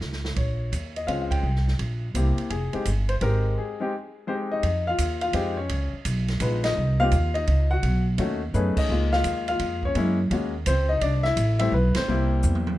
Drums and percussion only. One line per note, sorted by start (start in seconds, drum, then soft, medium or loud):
0.01 snare soft
0.12 snare soft
0.25 snare medium
0.36 kick medium
0.36 ride medium
0.72 kick soft
0.72 hi-hat pedal medium
0.72 ride medium
0.96 ride soft
1.08 kick soft
1.08 ride medium
1.31 kick medium
1.31 ride medium
1.55 snare soft
1.68 snare soft
1.79 kick soft
1.79 ride medium
2.15 kick soft
2.15 hi-hat pedal medium
2.15 ride medium
2.38 ride soft
2.50 kick soft
2.50 ride medium
2.73 ride soft
2.85 kick soft
2.85 hi-hat pedal medium
2.85 ride medium
3.09 ride soft
3.21 kick soft
3.21 ride medium
4.63 kick soft
4.63 ride medium
4.98 kick soft
4.98 hi-hat pedal medium
4.98 ride medium
5.21 ride soft
5.33 kick soft
5.33 ride medium
5.69 kick soft
5.69 ride medium
6.05 kick soft
6.05 hi-hat pedal medium
6.05 ride medium
6.28 snare soft
6.28 ride soft
6.40 kick soft
6.40 hi-hat pedal medium
6.40 ride medium
6.64 snare medium
6.64 ride medium
7.11 hi-hat pedal medium
7.11 ride medium
7.35 ride soft
7.47 kick soft
7.47 ride medium
7.83 kick soft
7.83 ride medium
8.18 kick soft
8.18 ride medium
8.54 hi-hat pedal medium
8.77 kick medium
8.77 crash medium
9.12 snare medium
9.24 kick soft
9.24 hi-hat pedal medium
9.24 ride medium
9.48 ride soft
9.59 kick soft
9.59 ride medium
9.83 kick soft
9.95 kick soft
9.95 ride medium
10.31 kick soft
10.31 ride medium
10.66 kick soft
10.66 hi-hat pedal medium
10.66 ride medium
11.01 kick soft
11.01 ride medium
11.24 snare soft
11.37 kick soft
11.37 hi-hat pedal medium
11.37 ride medium
11.59 ride medium
11.72 kick soft
11.95 snare medium
11.95 ride medium
12.43 hi-hat pedal medium
12.55 mid tom medium
12.67 mid tom medium